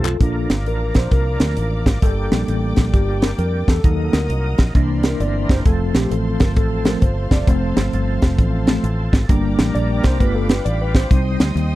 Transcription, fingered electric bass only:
0, 0, Header, 1, 2, 480
1, 0, Start_track
1, 0, Key_signature, -2, "major"
1, 0, Tempo, 454201
1, 222, Time_signature, 4, 2, 24, 8
1, 12421, End_track
2, 0, Start_track
2, 0, Title_t, "Fingered electric bass"
2, 0, Program_c, 0, 33
2, 0, Note_on_c, 0, 35, 83
2, 151, Note_off_c, 0, 35, 0
2, 215, Note_on_c, 0, 34, 89
2, 482, Note_off_c, 0, 34, 0
2, 527, Note_on_c, 0, 31, 84
2, 695, Note_off_c, 0, 31, 0
2, 695, Note_on_c, 0, 33, 77
2, 962, Note_off_c, 0, 33, 0
2, 1009, Note_on_c, 0, 34, 82
2, 1153, Note_off_c, 0, 34, 0
2, 1179, Note_on_c, 0, 36, 81
2, 1444, Note_off_c, 0, 36, 0
2, 1487, Note_on_c, 0, 38, 74
2, 1632, Note_off_c, 0, 38, 0
2, 1658, Note_on_c, 0, 33, 73
2, 1924, Note_off_c, 0, 33, 0
2, 1966, Note_on_c, 0, 32, 91
2, 2111, Note_off_c, 0, 32, 0
2, 2140, Note_on_c, 0, 31, 90
2, 2405, Note_off_c, 0, 31, 0
2, 2450, Note_on_c, 0, 34, 89
2, 2594, Note_off_c, 0, 34, 0
2, 2619, Note_on_c, 0, 33, 85
2, 2884, Note_off_c, 0, 33, 0
2, 2934, Note_on_c, 0, 34, 77
2, 3076, Note_off_c, 0, 34, 0
2, 3102, Note_on_c, 0, 31, 89
2, 3509, Note_off_c, 0, 31, 0
2, 3575, Note_on_c, 0, 41, 73
2, 3842, Note_off_c, 0, 41, 0
2, 3885, Note_on_c, 0, 40, 71
2, 4031, Note_off_c, 0, 40, 0
2, 4059, Note_on_c, 0, 39, 90
2, 4324, Note_off_c, 0, 39, 0
2, 4370, Note_on_c, 0, 38, 88
2, 4514, Note_off_c, 0, 38, 0
2, 4537, Note_on_c, 0, 36, 83
2, 4803, Note_off_c, 0, 36, 0
2, 4847, Note_on_c, 0, 34, 84
2, 4993, Note_off_c, 0, 34, 0
2, 5018, Note_on_c, 0, 36, 88
2, 5427, Note_off_c, 0, 36, 0
2, 5494, Note_on_c, 0, 31, 83
2, 5762, Note_off_c, 0, 31, 0
2, 5806, Note_on_c, 0, 30, 88
2, 5952, Note_off_c, 0, 30, 0
2, 5977, Note_on_c, 0, 29, 81
2, 6244, Note_off_c, 0, 29, 0
2, 6282, Note_on_c, 0, 34, 82
2, 6430, Note_off_c, 0, 34, 0
2, 6453, Note_on_c, 0, 33, 72
2, 6722, Note_off_c, 0, 33, 0
2, 6770, Note_on_c, 0, 31, 69
2, 6939, Note_off_c, 0, 31, 0
2, 6939, Note_on_c, 0, 33, 79
2, 7349, Note_off_c, 0, 33, 0
2, 7418, Note_on_c, 0, 31, 76
2, 7685, Note_off_c, 0, 31, 0
2, 7724, Note_on_c, 0, 30, 81
2, 7872, Note_off_c, 0, 30, 0
2, 7897, Note_on_c, 0, 29, 86
2, 8164, Note_off_c, 0, 29, 0
2, 8209, Note_on_c, 0, 31, 82
2, 8354, Note_off_c, 0, 31, 0
2, 8380, Note_on_c, 0, 31, 83
2, 8646, Note_off_c, 0, 31, 0
2, 8693, Note_on_c, 0, 29, 78
2, 8837, Note_off_c, 0, 29, 0
2, 8860, Note_on_c, 0, 33, 84
2, 9269, Note_off_c, 0, 33, 0
2, 9336, Note_on_c, 0, 33, 79
2, 9604, Note_off_c, 0, 33, 0
2, 9648, Note_on_c, 0, 32, 86
2, 9793, Note_off_c, 0, 32, 0
2, 9820, Note_on_c, 0, 31, 94
2, 10086, Note_off_c, 0, 31, 0
2, 10130, Note_on_c, 0, 33, 97
2, 10275, Note_off_c, 0, 33, 0
2, 10301, Note_on_c, 0, 34, 78
2, 10567, Note_off_c, 0, 34, 0
2, 10614, Note_on_c, 0, 36, 89
2, 10757, Note_off_c, 0, 36, 0
2, 10784, Note_on_c, 0, 31, 101
2, 11191, Note_off_c, 0, 31, 0
2, 11260, Note_on_c, 0, 33, 80
2, 11668, Note_off_c, 0, 33, 0
2, 11738, Note_on_c, 0, 36, 97
2, 12004, Note_off_c, 0, 36, 0
2, 12049, Note_on_c, 0, 38, 79
2, 12193, Note_off_c, 0, 38, 0
2, 12211, Note_on_c, 0, 39, 89
2, 12421, Note_off_c, 0, 39, 0
2, 12421, End_track
0, 0, End_of_file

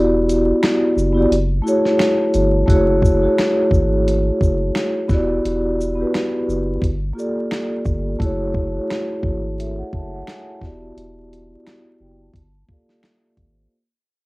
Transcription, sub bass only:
0, 0, Header, 1, 2, 480
1, 0, Start_track
1, 0, Tempo, 689655
1, 1865, Time_signature, 4, 2, 24, 8
1, 9924, End_track
2, 0, Start_track
2, 0, Title_t, "Sub bass"
2, 0, Program_c, 0, 38
2, 0, Note_on_c, 0, 28, 120
2, 360, Note_off_c, 0, 28, 0
2, 673, Note_on_c, 0, 30, 91
2, 875, Note_off_c, 0, 30, 0
2, 912, Note_on_c, 0, 30, 104
2, 1115, Note_off_c, 0, 30, 0
2, 1632, Note_on_c, 0, 31, 99
2, 1835, Note_off_c, 0, 31, 0
2, 1868, Note_on_c, 0, 30, 111
2, 2278, Note_off_c, 0, 30, 0
2, 2585, Note_on_c, 0, 32, 85
2, 2996, Note_off_c, 0, 32, 0
2, 3071, Note_on_c, 0, 30, 93
2, 3274, Note_off_c, 0, 30, 0
2, 3547, Note_on_c, 0, 28, 95
2, 3752, Note_off_c, 0, 28, 0
2, 3794, Note_on_c, 0, 28, 120
2, 4201, Note_off_c, 0, 28, 0
2, 4513, Note_on_c, 0, 30, 89
2, 4715, Note_off_c, 0, 30, 0
2, 4748, Note_on_c, 0, 31, 101
2, 4952, Note_off_c, 0, 31, 0
2, 5470, Note_on_c, 0, 31, 90
2, 5673, Note_off_c, 0, 31, 0
2, 5710, Note_on_c, 0, 30, 112
2, 6119, Note_off_c, 0, 30, 0
2, 6428, Note_on_c, 0, 32, 85
2, 6838, Note_off_c, 0, 32, 0
2, 6914, Note_on_c, 0, 30, 92
2, 7116, Note_off_c, 0, 30, 0
2, 7391, Note_on_c, 0, 28, 89
2, 7594, Note_off_c, 0, 28, 0
2, 7634, Note_on_c, 0, 28, 109
2, 8041, Note_off_c, 0, 28, 0
2, 8354, Note_on_c, 0, 30, 88
2, 8556, Note_off_c, 0, 30, 0
2, 8589, Note_on_c, 0, 31, 96
2, 8793, Note_off_c, 0, 31, 0
2, 9310, Note_on_c, 0, 32, 83
2, 9513, Note_off_c, 0, 32, 0
2, 9924, End_track
0, 0, End_of_file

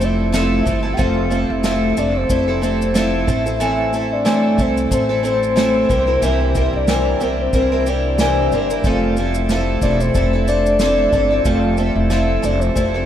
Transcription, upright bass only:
0, 0, Header, 1, 2, 480
1, 0, Start_track
1, 0, Key_signature, -1, "major"
1, 0, Tempo, 653595
1, 729, Time_signature, 4, 2, 24, 8
1, 9588, End_track
2, 0, Start_track
2, 0, Title_t, "Upright bass"
2, 0, Program_c, 0, 32
2, 0, Note_on_c, 0, 29, 94
2, 458, Note_off_c, 0, 29, 0
2, 488, Note_on_c, 0, 31, 82
2, 709, Note_off_c, 0, 31, 0
2, 728, Note_on_c, 0, 29, 91
2, 1071, Note_off_c, 0, 29, 0
2, 1101, Note_on_c, 0, 29, 88
2, 1421, Note_off_c, 0, 29, 0
2, 1451, Note_on_c, 0, 29, 94
2, 1671, Note_off_c, 0, 29, 0
2, 1687, Note_on_c, 0, 29, 94
2, 2379, Note_off_c, 0, 29, 0
2, 2407, Note_on_c, 0, 33, 85
2, 3340, Note_off_c, 0, 33, 0
2, 3368, Note_on_c, 0, 36, 86
2, 3590, Note_off_c, 0, 36, 0
2, 3609, Note_on_c, 0, 33, 96
2, 4301, Note_off_c, 0, 33, 0
2, 4329, Note_on_c, 0, 36, 92
2, 4551, Note_off_c, 0, 36, 0
2, 4569, Note_on_c, 0, 36, 92
2, 4913, Note_off_c, 0, 36, 0
2, 4944, Note_on_c, 0, 36, 86
2, 5264, Note_off_c, 0, 36, 0
2, 5290, Note_on_c, 0, 36, 93
2, 5511, Note_off_c, 0, 36, 0
2, 5531, Note_on_c, 0, 36, 93
2, 6222, Note_off_c, 0, 36, 0
2, 6246, Note_on_c, 0, 31, 80
2, 6469, Note_off_c, 0, 31, 0
2, 6493, Note_on_c, 0, 29, 88
2, 7183, Note_off_c, 0, 29, 0
2, 7211, Note_on_c, 0, 28, 88
2, 7432, Note_off_c, 0, 28, 0
2, 7452, Note_on_c, 0, 29, 95
2, 8142, Note_off_c, 0, 29, 0
2, 8171, Note_on_c, 0, 31, 76
2, 8392, Note_off_c, 0, 31, 0
2, 8411, Note_on_c, 0, 29, 92
2, 8754, Note_off_c, 0, 29, 0
2, 8780, Note_on_c, 0, 29, 89
2, 9102, Note_off_c, 0, 29, 0
2, 9130, Note_on_c, 0, 29, 96
2, 9351, Note_off_c, 0, 29, 0
2, 9371, Note_on_c, 0, 29, 93
2, 9588, Note_off_c, 0, 29, 0
2, 9588, End_track
0, 0, End_of_file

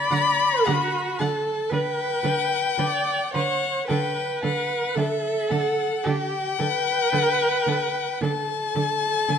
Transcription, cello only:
0, 0, Header, 1, 2, 480
1, 0, Start_track
1, 0, Key_signature, 2, "major"
1, 0, Tempo, 1079137
1, 1727, Time_signature, 4, 2, 24, 8
1, 4175, End_track
2, 0, Start_track
2, 0, Title_t, "Cello"
2, 0, Program_c, 0, 42
2, 50, Note_on_c, 0, 50, 79
2, 85, Note_off_c, 0, 50, 0
2, 299, Note_on_c, 0, 50, 87
2, 335, Note_off_c, 0, 50, 0
2, 535, Note_on_c, 0, 50, 77
2, 570, Note_off_c, 0, 50, 0
2, 764, Note_on_c, 0, 50, 80
2, 800, Note_off_c, 0, 50, 0
2, 994, Note_on_c, 0, 50, 71
2, 1030, Note_off_c, 0, 50, 0
2, 1237, Note_on_c, 0, 50, 68
2, 1273, Note_off_c, 0, 50, 0
2, 1488, Note_on_c, 0, 50, 70
2, 1524, Note_off_c, 0, 50, 0
2, 1733, Note_on_c, 0, 50, 88
2, 1769, Note_off_c, 0, 50, 0
2, 1972, Note_on_c, 0, 50, 74
2, 2008, Note_off_c, 0, 50, 0
2, 2209, Note_on_c, 0, 50, 84
2, 2245, Note_off_c, 0, 50, 0
2, 2450, Note_on_c, 0, 50, 77
2, 2485, Note_off_c, 0, 50, 0
2, 2696, Note_on_c, 0, 50, 86
2, 2731, Note_off_c, 0, 50, 0
2, 2933, Note_on_c, 0, 50, 67
2, 2968, Note_off_c, 0, 50, 0
2, 3171, Note_on_c, 0, 50, 76
2, 3207, Note_off_c, 0, 50, 0
2, 3411, Note_on_c, 0, 50, 76
2, 3446, Note_off_c, 0, 50, 0
2, 3654, Note_on_c, 0, 50, 87
2, 3689, Note_off_c, 0, 50, 0
2, 3894, Note_on_c, 0, 50, 74
2, 3930, Note_off_c, 0, 50, 0
2, 4132, Note_on_c, 0, 50, 75
2, 4167, Note_off_c, 0, 50, 0
2, 4175, End_track
0, 0, End_of_file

